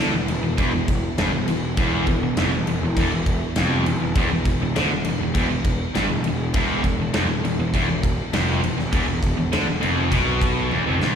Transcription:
0.00 0.11 D2 loud
0.00 0.13 D3 loud
0.00 11.15 E3 medium
0.00 11.15 B3 medium
0.00 11.15 E4 loud
0.12 0.27 E1 medium
0.12 0.27 E2 medium
0.28 0.42 E1 medium
0.28 0.43 E2 medium
0.28 crash medium
0.42 0.57 E1 medium
0.42 0.57 E2 medium
0.58 0.72 E1 medium
0.58 0.72 E2 loud
0.58 kick medium
0.58 crash medium
0.73 1.02 E1 medium
0.73 0.97 E2 medium
0.88 kick medium
0.88 crash medium
1.18 1.32 G1 loud
1.18 1.32 G2 loud
1.18 snare loud
1.18 crash medium
1.33 1.47 E1 medium
1.33 1.47 E2 medium
1.48 1.76 E1 medium
1.48 1.72 E2 medium
1.48 crash medium
1.77 2.05 E1 medium
1.77 2.07 E2 loud
1.77 kick loud
1.77 crash medium
2.06 2.21 E1 medium
2.06 2.22 E2 medium
2.06 kick medium
2.06 crash medium
2.22 2.36 E1 medium
2.22 2.37 E2 medium
2.37 2.51 F1 loud
2.37 2.52 F2 loud
2.37 snare loud
2.37 crash medium
2.53 2.66 E1 medium
2.53 2.66 E2 medium
2.67 2.81 E1 medium
2.67 2.81 E2 medium
2.67 crash medium
2.82 2.96 E1 medium
2.82 2.96 E2 medium
2.97 3.11 E1 medium
2.97 3.11 E2 loud
2.97 kick medium
2.97 crash medium
3.11 3.39 E1 medium
3.11 3.36 E2 medium
3.26 kick medium
3.26 crash medium
3.56 3.84 F1 loud
3.56 3.85 F2 loud
3.56 snare loud
3.56 crash medium
3.86 4.00 E1 medium
3.86 4.00 E2 medium
3.86 crash medium
4.01 4.15 E1 medium
4.01 4.15 E2 medium
4.15 4.30 E1 loud
4.15 4.30 E2 loud
4.15 kick loud
4.15 crash medium
4.31 4.59 E1 medium
4.31 4.55 E2 medium
4.45 kick medium
4.45 crash medium
4.61 4.75 E1 medium
4.61 4.76 E2 medium
4.75 4.91 D2 loud
4.75 4.90 D3 loud
4.75 snare loud
4.75 crash medium
4.90 5.05 E1 medium
4.90 5.04 E2 medium
5.04 5.20 E1 medium
5.04 5.19 E2 medium
5.04 crash medium
5.20 5.35 E1 medium
5.20 5.33 E2 medium
5.34 5.49 E1 loud
5.34 5.48 E2 loud
5.34 kick medium
5.34 crash medium
5.38 5.51 E2 loud
5.49 5.79 E1 medium
5.49 5.74 E2 medium
5.64 kick medium
5.64 crash medium
5.94 6.09 G1 loud
5.94 6.08 G2 loud
5.94 snare loud
5.94 crash medium
6.09 6.24 E1 medium
6.09 6.23 E2 medium
6.24 6.53 E1 medium
6.24 6.48 E2 medium
6.24 crash medium
6.54 6.82 E1 loud
6.54 6.83 E2 loud
6.54 kick loud
6.54 crash medium
6.84 6.98 E1 medium
6.84 6.99 E2 medium
6.84 kick medium
6.84 crash medium
6.99 7.13 E1 medium
6.99 7.13 E2 medium
7.13 7.28 F1 loud
7.13 7.28 F2 medium
7.13 snare loud
7.13 crash medium
7.29 7.43 E1 medium
7.29 7.43 E2 medium
7.44 7.58 E1 medium
7.44 7.58 E2 medium
7.44 crash medium
7.59 7.73 E1 medium
7.59 7.74 E2 medium
7.74 7.88 E1 loud
7.74 7.89 E2 loud
7.74 kick medium
7.74 crash medium
7.89 8.17 E1 medium
7.89 8.13 E2 medium
8.03 kick medium
8.03 crash medium
8.33 8.61 F1 loud
8.33 8.62 F2 loud
8.33 snare loud
8.33 crash medium
8.63 8.78 E1 medium
8.63 8.76 E2 medium
8.63 crash medium
8.78 8.92 E1 medium
8.78 8.91 E2 medium
8.78 snare soft
8.93 9.07 E1 loud
8.93 9.07 E2 loud
8.93 kick loud
8.93 crash medium
9.08 9.36 E1 medium
9.08 9.32 E2 medium
9.23 kick medium
9.23 crash medium
9.37 9.52 E1 medium
9.37 9.53 E2 medium
9.52 9.67 D2 medium
9.52 9.67 D3 medium
9.52 snare loud
9.52 crash medium
9.67 9.82 E1 medium
9.67 9.80 E2 medium
9.81 10.10 F1 medium
9.81 10.11 F2 loud
9.81 crash medium
10.11 10.68 B1 loud
10.11 10.71 B2 loud
10.11 kick medium
10.11 crash medium
10.42 kick medium
10.42 crash medium
10.70 10.85 E1 medium
10.70 10.85 E2 loud
10.70 high tom medium
10.86 11.00 F1 medium
10.86 10.99 F2 loud
10.99 11.14 E1 medium
10.99 11.15 E2 medium
10.99 snare loud

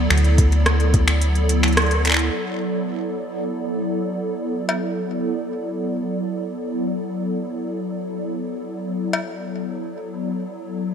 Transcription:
0.00 6.76 F#3 medium
0.00 10.94 B3 medium
0.00 10.94 E4 medium
0.00 10.94 A4 medium
0.00 10.94 D5 medium
0.10 2.30 D2 medium
0.10 finger snap medium
0.17 closed hi-hat medium
0.24 closed hi-hat soft
0.38 kick loud
0.38 closed hi-hat loud
0.52 closed hi-hat soft
0.66 cross-stick loud
0.66 closed hi-hat medium
0.80 closed hi-hat soft
0.94 kick loud
0.94 closed hi-hat medium
1.08 finger snap medium
1.08 closed hi-hat soft
1.21 closed hi-hat medium
1.35 closed hi-hat soft
1.49 closed hi-hat loud
1.63 finger snap medium
1.63 closed hi-hat soft
1.68 closed hi-hat soft
1.72 closed hi-hat soft
1.77 cross-stick loud
1.77 closed hi-hat medium
1.82 closed hi-hat soft
1.86 closed hi-hat soft
1.91 closed hi-hat soft
2.05 finger snap soft
2.05 closed hi-hat medium
2.07 finger snap soft
2.10 finger snap medium
2.12 finger snap medium
2.14 finger snap medium
2.17 finger snap medium
2.17 closed hi-hat soft
4.69 cowbell medium
6.77 10.94 F#3 medium
9.13 cowbell medium

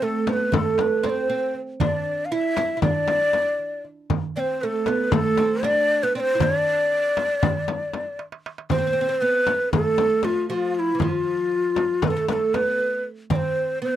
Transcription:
0.02 0.27 A3 medium
0.02 0.31 A4 medium
0.27 0.52 B3 medium
0.27 0.34 C5 medium
0.27 darbuka tek medium
0.27 frame drum medium
0.33 0.56 B4 medium
0.52 1.05 A3 medium
0.52 0.82 A4 loud
0.52 darbuka dum medium
0.52 frame drum loud
0.78 1.08 B4 medium
0.78 darbuka tek medium
0.78 frame drum medium
1.03 1.28 C4 medium
1.03 1.11 D5 medium
1.03 darbuka tek medium
1.03 frame drum medium
1.09 1.56 C5 medium
1.28 1.53 C4 medium
1.28 darbuka ka soft
1.54 darbuka ka soft
1.80 2.31 D4 medium
1.80 2.27 D5 medium
1.80 darbuka dum medium
1.80 frame drum medium
2.25 2.34 F5 medium
2.32 2.56 E4 medium
2.32 2.82 E5 loud
2.56 2.76 E4 medium
2.56 darbuka tek medium
2.56 frame drum medium
2.77 2.83 E4 medium
2.82 3.81 D4 medium
2.82 3.81 D5 loud
2.82 frame drum medium
2.82 darbuka dum medium
3.08 darbuka tek medium
3.08 frame drum medium
3.33 darbuka tek medium
3.33 frame drum medium
3.59 darbuka ka soft
3.85 darbuka ka soft
4.10 frame drum medium
4.10 darbuka dum medium
4.36 4.63 C4 medium
4.36 4.63 C5 loud
4.36 4.40 D5 medium
4.61 4.87 A3 medium
4.61 4.89 A4 medium
4.61 4.66 B4 medium
4.86 5.13 B3 medium
4.86 5.14 B4 medium
4.86 darbuka tek medium
4.86 frame drum medium
5.12 5.39 A3 medium
5.12 5.66 A4 loud
5.12 frame drum loud
5.12 darbuka dum medium
5.37 5.64 C4 medium
5.37 darbuka tek medium
5.37 frame drum medium
5.63 6.04 D4 loud
5.63 6.05 D5 loud
5.63 darbuka tek medium
5.63 frame drum medium
5.89 darbuka ka soft
6.03 6.16 B3 medium
6.03 6.16 B4 medium
6.14 6.34 C4 medium
6.14 6.21 D5 loud
6.14 darbuka ka soft
6.20 6.44 C5 loud
6.35 6.40 E4 medium
6.40 8.16 D4 medium
6.40 8.20 D5 loud
6.40 darbuka dum medium
6.40 frame drum medium
6.92 darbuka ka soft
7.17 darbuka tek medium
7.17 frame drum medium
7.43 frame drum loud
7.43 darbuka dum medium
7.68 darbuka tek medium
7.68 frame drum medium
7.94 darbuka tek medium
7.94 frame drum medium
8.19 darbuka tek medium
8.32 darbuka ka medium
8.46 darbuka tek medium
8.58 darbuka ka medium
8.70 8.77 C4 medium
8.70 9.23 C5 medium
8.70 frame drum medium
8.70 darbuka dum medium
8.78 8.86 C4 medium
8.87 8.92 C4 medium
8.93 9.00 C4 medium
9.01 9.08 C4 medium
9.09 9.16 C4 medium
9.21 9.46 B3 medium
9.21 9.72 B4 medium
9.21 darbuka ka soft
9.47 9.73 B3 medium
9.47 darbuka tek medium
9.47 frame drum medium
9.73 10.26 A3 medium
9.73 10.26 A4 loud
9.73 darbuka dum medium
9.73 frame drum loud
9.98 darbuka tek medium
9.98 frame drum medium
10.23 10.48 F3 medium
10.23 10.48 F4 medium
10.23 darbuka tek medium
10.23 frame drum medium
10.49 10.94 F3 medium
10.49 10.55 F#4 medium
10.49 darbuka ka soft
10.54 10.75 F4 medium
10.75 10.80 F4 medium
10.79 11.00 E4 medium
10.95 11.01 E3 medium
11.00 12.07 F3 medium
11.00 11.12 E4 medium
11.00 frame drum medium
11.00 darbuka dum medium
11.12 12.05 F4 medium
11.52 darbuka ka soft
11.76 darbuka tek medium
11.76 frame drum medium
12.02 12.10 A3 medium
12.02 12.09 B4 medium
12.02 frame drum medium
12.02 darbuka dum medium
12.08 12.16 B3 medium
12.08 12.29 A4 medium
12.17 12.28 A3 medium
12.29 12.54 A3 medium
12.29 12.34 B4 medium
12.29 darbuka tek medium
12.29 frame drum medium
12.33 12.56 A4 medium
12.54 13.01 B3 medium
12.54 13.04 B4 medium
12.54 darbuka tek medium
12.54 frame drum medium
12.80 darbuka ka soft
13.30 13.78 C4 medium
13.30 13.37 D5 medium
13.30 frame drum medium
13.30 darbuka dum medium
13.36 13.79 C5 medium
13.82 13.96 B3 medium
13.82 13.96 B4 medium
13.82 darbuka ka soft

